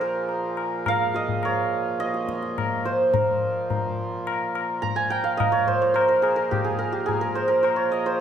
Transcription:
Already playing: A#2 F3 G#4 C5
0.01 A#4
0.29 tabla tin
0.57 tabla na
0.86 F5, tabla na, tabla ge
1.14 D#5, tabla te
1.29 tabla ge
1.43 C#5, tabla na
2.00 D#5, tabla te
2.14 tabla te
2.29 tabla ke
2.43 tabla te
2.58 tabla na, tabla ge
2.85 C5, tabla te
3.13 A#2 F3 A#4, tabla tin, tabla ge
3.70 tabla tin, tabla ge
4.27 tabla na
4.55 tabla na
4.82 A#5, tabla tin, tabla ge
4.96 G#5
5.10 G5, tabla na
5.24 F5
5.37 D#5, tabla na, tabla ge
5.52 C#5
5.68 C5, tabla ge
5.82 C#5
5.94 C5, tabla na
6.08 A#4
6.22 G#4, tabla na
6.36 A#4
6.51 G4, tabla tin, tabla ge
6.64 G#4
6.79 A#4
6.92 G4
7.06 G#4, tabla tin, tabla ge
7.21 A#4
7.35 C5, tabla na
7.48 A#4
7.63 C5, tabla na
7.76 C#5
7.92 D#5, tabla na
8.06 C5

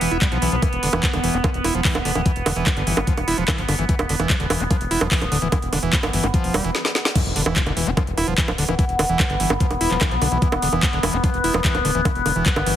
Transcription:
Already playing: B3
0.01 E1 E3, open hi-hat
0.11 E1 E4
0.22 G3, kick, clap, closed hi-hat
0.32 B1 F3, closed hi-hat
0.42 B1 E3, open hi-hat
0.52 B1 F3, closed hi-hat
0.62 E3, kick, closed hi-hat, high bongo
0.73 E1, closed hi-hat
0.83 E1 D3, open hi-hat
0.93 E1 E3, high bongo
1.03 F3, kick, clap, closed hi-hat
1.13 E1 D3, closed hi-hat, high bongo
1.24 E1 E3, open hi-hat
1.34 E1 E4, closed hi-hat
1.44 F3, kick, closed hi-hat, high bongo
1.54 E1, closed hi-hat
1.64 E1 E4, open hi-hat, high bongo
1.75 E1 F3
1.85 E3, kick, clap, open hi-hat
1.95 D1 F3, closed hi-hat, high bongo
2.05 D1 D3, open hi-hat
2.15 D1 E3, closed hi-hat, high bongo
2.26 E3, kick, closed hi-hat
2.36 E1, closed hi-hat
2.46 E1 D3, open hi-hat, high bongo
2.56 E1 E3, closed hi-hat
2.66 F3, kick, clap, closed hi-hat, high bongo
2.77 G1 D3, closed hi-hat
2.87 G1 E3, open hi-hat
2.97 G1 E4, closed hi-hat, high bongo
3.07 F3, kick, closed hi-hat
3.17 E1, closed hi-hat, high bongo
3.28 E1 E4, open hi-hat
3.38 E1 F3, closed hi-hat
3.48 E3, kick, clap, closed hi-hat, high bongo
3.58 G1 F3, closed hi-hat
3.68 G1 D3, open hi-hat, high bongo
3.79 G1 E3, closed hi-hat
3.89 E3, kick, closed hi-hat
3.99 E1, closed hi-hat, high bongo
4.09 E1 D3, open hi-hat
4.20 E1 E3, closed hi-hat, high bongo
4.30 F3, kick, clap, closed hi-hat
4.40 E1 D3, closed hi-hat
4.50 E1 E3, open hi-hat, high bongo
4.60 E1 E4, closed hi-hat
4.71 F3, kick, closed hi-hat, high bongo
4.81 E1, closed hi-hat
4.91 E1 E4, open hi-hat
5.01 E1 F3, closed hi-hat, high bongo
5.11 E3, kick, clap, open hi-hat
5.22 D1 F3, closed hi-hat, high bongo
5.32 D1 D3, open hi-hat
5.42 D1 E3, closed hi-hat
5.52 E3, kick, closed hi-hat, high bongo
5.62 E1, closed hi-hat
5.73 E1 D3, open hi-hat, high bongo
5.83 E1 E3, closed hi-hat
5.93 F3, kick, clap, closed hi-hat
6.03 G1 D3, closed hi-hat, high bongo
6.13 G1 E3, open hi-hat
6.24 G1 E4, closed hi-hat, high bongo
6.34 F3, kick, closed hi-hat
6.44 E1, open hi-hat
6.54 E1 G3, open hi-hat, high bongo
6.64 E1 E3, closed hi-hat
6.75 snare
6.85 snare
6.95 snare
7.05 snare
7.15 E3 B3, kick, closed hi-hat, crash, impact, high bongo
7.26 E1, closed hi-hat
7.36 E1 D3, open hi-hat
7.46 E1 E3, high bongo
7.56 F3, kick, clap, closed hi-hat
7.66 E1 D3, closed hi-hat, high bongo
7.77 E1 E3, open hi-hat
7.87 E1 E4, closed hi-hat
7.97 F3, kick, closed hi-hat, high bongo
8.07 E1, closed hi-hat
8.17 E1 E4, open hi-hat, high bongo
8.28 E1 F3, closed hi-hat
8.38 kick, clap, closed hi-hat
8.48 D1 F3, closed hi-hat, high bongo
8.58 D1 D3, open hi-hat
8.69 D1 E3, high bongo
8.79 E3, kick, closed hi-hat
8.89 E1, closed hi-hat
8.99 E1 D3, open hi-hat, high bongo
9.09 E1 E3, closed hi-hat
9.20 F3, kick, clap, closed hi-hat, high bongo
9.30 G1 D3, closed hi-hat
9.40 G1 E3, open hi-hat
9.50 G1 E4, high bongo
9.60 F3, kick, closed hi-hat
9.71 E1, closed hi-hat, high bongo
9.81 E1 E4, open hi-hat
9.91 E1 F3, clap, closed hi-hat
10.01 E3, kick, clap, closed hi-hat, high bongo
10.11 B1 F3, closed hi-hat
10.22 B1 D3, open hi-hat, high bongo
10.32 B1 E3, closed hi-hat
10.42 E3, kick, closed hi-hat
10.52 E1, closed hi-hat, high bongo
10.62 E1 D3, open hi-hat
10.73 E1 E3, closed hi-hat, high bongo
10.83 F3, kick, clap, closed hi-hat
10.93 E1 D3, closed hi-hat
11.03 E1 E3, open hi-hat, high bongo
11.13 E1 E4, closed hi-hat
11.24 F3, kick, closed hi-hat, high bongo
11.34 E1, closed hi-hat
11.44 E1 E4, open hi-hat
11.54 E1 F3, high bongo
11.64 E3, kick, clap, closed hi-hat
11.75 D1 F3, closed hi-hat, high bongo
11.85 D1 D3, open hi-hat
11.95 D1 E3, closed hi-hat
12.05 E3, kick, closed hi-hat, high bongo
12.15 E1, closed hi-hat
12.26 E1 D3, open hi-hat, high bongo
12.36 E1 E3
12.46 F3, kick, clap, closed hi-hat
12.56 G1 D3, closed hi-hat, high bongo
12.66 G1 E3, open hi-hat

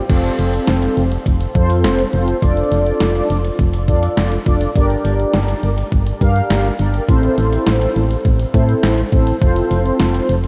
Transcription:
0.09 F1 C4 F4 A4 C5, kick, closed hi-hat, crash
0.24 closed hi-hat
0.39 F1, closed hi-hat
0.54 closed hi-hat
0.67 F1, snare, closed hi-hat
0.82 closed hi-hat
0.97 F1, closed hi-hat
1.12 closed hi-hat
1.26 F1, kick, closed hi-hat
1.41 closed hi-hat
1.55 F2 C4 F4 A4 C5, kick, closed hi-hat
1.70 closed hi-hat
1.84 F1, snare, closed hi-hat
1.99 closed hi-hat
2.13 F1 C4 F4 A4 C5, closed hi-hat
2.28 closed hi-hat
2.42 F1 D4 F4 A4 D5, kick, closed hi-hat
2.57 closed hi-hat
2.72 F1, closed hi-hat
2.87 closed hi-hat
3.01 F1, snare, closed hi-hat
3.15 closed hi-hat
3.30 F1, closed hi-hat
3.45 closed hi-hat
3.59 F1, kick, closed hi-hat
3.73 closed hi-hat
3.88 F2 D4 F4 A4 D5, kick, closed hi-hat
4.03 closed hi-hat
4.17 F1, snare, closed hi-hat
4.32 closed hi-hat
4.46 F1 D4 F4 A4 D5, kick, closed hi-hat
4.61 closed hi-hat
4.75 G1 D4 G4 A#4 D5, kick, closed hi-hat
4.90 closed hi-hat
5.05 G1, closed hi-hat
5.20 closed hi-hat
5.33 G1, snare, closed hi-hat
5.48 closed hi-hat
5.63 G1, closed hi-hat
5.78 closed hi-hat
5.92 G1, kick, closed hi-hat
6.07 closed hi-hat
6.21 G2 D4 G4 A#4 F5, kick, closed hi-hat
6.36 closed hi-hat
6.50 G1, snare, closed hi-hat
6.65 closed hi-hat
6.79 G1 D4 G4 A#4 D5, closed hi-hat
6.94 closed hi-hat
7.08 A1 C4 E4 A4 C5, kick, closed hi-hat
7.23 closed hi-hat
7.38 A1, closed hi-hat
7.53 closed hi-hat
7.67 A1, snare, closed hi-hat
7.81 closed hi-hat
7.96 A1, closed hi-hat
8.11 closed hi-hat
8.25 A1, kick, closed hi-hat
8.40 closed hi-hat
8.54 A2 C4 E4 A4 C5, kick, closed hi-hat
8.69 closed hi-hat
8.83 A1, snare, closed hi-hat
8.98 closed hi-hat
9.12 A1 C4 E4 A4 C5, kick, closed hi-hat
9.27 closed hi-hat
9.42 F1 C4 F4 A4 C5, kick, closed hi-hat
9.56 closed hi-hat
9.71 F1, closed hi-hat
9.86 closed hi-hat
10.00 F1, snare, closed hi-hat
10.14 closed hi-hat
10.29 F1, closed hi-hat
10.44 closed hi-hat

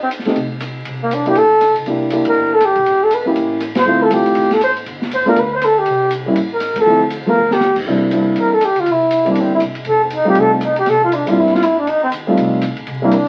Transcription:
Already playing: F2
0.03 C4
0.11 hi-hat pedal, ride
0.19 snare
0.25 A3 C4 D#4 G4, muted upright bass stroke, snare, ride
0.36 C2, kick, ride
0.60 cross-stick, hi-hat pedal, ride
0.85 C2, kick, ride
1.03 A#3
1.11 D4, hi-hat pedal, ride
1.26 A#3 D4 E4 G4, ride
1.35 G1 A4, kick, ride
1.61 cross-stick, hi-hat pedal, ride
1.69 C2
1.76 C#2, ride
1.86 C2 A#3 D4 E4 G4, kick, ride
2.10 A#3 D4 E4 G4, hi-hat pedal, ride
2.25 A#4, kick, ride
2.36 G1
2.54 A4
2.60 cross-stick, hi-hat pedal, ride
2.65 G4
2.76 B1, kick, ride
2.86 E1, kick, ride
3.04 A4
3.11 B4, hi-hat pedal, ride
3.25 A#3 C#4 E4 G4
3.35 A1, kick, ride
3.60 cross-stick, hi-hat pedal, ride
3.75 C5, snare, ride
3.85 D2 A3 C4 E4 F4
4.03 A4
4.10 A3 C4 E4 F4 G4, hi-hat pedal, ride
4.26 D#2, ride
4.35 A1, kick, ride
4.51 A4, snare, ride
4.61 C5, cross-stick, hi-hat pedal, ride
4.77 ride
4.86 G1, kick, ride
5.02 snare
5.10 F#1, hi-hat pedal, ride
5.15 C5
5.25 A3 B3 D4 F4 A#4
5.36 D2 B4, kick, ride
5.55 C5
5.61 A4, cross-stick, hi-hat pedal, ride
5.79 G4
5.86 C2, kick, ride
6.11 hi-hat pedal, ride
6.26 G#1 G3 A#3 C#4 E4
6.36 A1, kick, ride
6.53 A#4
6.60 cross-stick, hi-hat pedal, ride
6.76 A4, muted upright bass stroke, kick, ride
6.86 D2 F3 A3 C4 E4
7.10 hi-hat pedal, ride
7.26 F3 A3 B3 F4 A#4, muted upright bass stroke
7.36 G1
7.51 G4, snare
7.60 snare, hi-hat pedal
7.76 kick, crash
7.86 C2 G3 A#3 C4 D4 E4, kick
8.11 G3 A#3 C4 D4 E4, hi-hat pedal, ride
8.36 E2, kick, ride
8.40 A#4
8.53 A4
8.61 G4, cross-stick, hi-hat pedal, ride
8.75 D2, ride
8.80 F4
8.86 C2, kick, ride
8.91 E4
9.11 hi-hat pedal, ride
9.25 G3 A#3 C4 D4 E4, ride
9.30 D4
9.35 G1, kick, ride
9.40 C4
9.55 E4
9.60 C2, cross-stick, hi-hat pedal, ride
9.75 ride
9.85 F1 A4, kick, ride
10.04 C4
10.10 D#4, hi-hat pedal, ride
10.25 G3 A3 C4 D#4 F4 G4
10.35 C2, kick, ride
10.40 A4
10.54 C4
10.61 D#4, cross-stick, hi-hat pedal, ride
10.76 G4, ride
10.86 C2 A4, kick, snare, ride
11.01 F4, kick
11.12 D4, hi-hat pedal, ride
11.26 G3 A#3 C4 D4 E4 F4, ride
11.37 G2 E4, kick
11.46 snare
11.53 F4, snare
11.62 E4, cross-stick, hi-hat pedal, ride
11.78 D4
11.87 F2 D#4, kick, ride
12.04 C4
12.11 D#2, hi-hat pedal, ride
12.27 G3 A3 C4 D#4 F4
12.37 C2, kick, ride
12.61 cross-stick, hi-hat pedal, ride
12.70 D#2
12.77 A#1, ride
12.87 C2, kick, ride
13.02 G3 A#3 C4 D4 E4
13.11 D4, hi-hat pedal, ride

